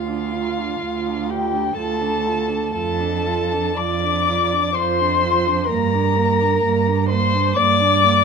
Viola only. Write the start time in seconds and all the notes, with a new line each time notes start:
0.08 D4
0.33 F4
0.58 D4
0.82 F4
1.07 D4
1.30 F4
1.54 D4
1.78 F4
2.01 D4
2.26 F4
2.49 D4
2.74 F4
3.00 D4
3.26 F4
3.52 D4
3.77 F4
4.04 D4
4.28 F4
4.53 D4
4.76 F4
5.00 D4
5.23 F4
5.47 D4
5.70 A#3
5.94 D4
6.16 A#3
6.40 D4
6.64 A#3
6.88 D4
7.12 A#3
7.33 D4
7.57 A#3
7.80 D4
8.04 A#3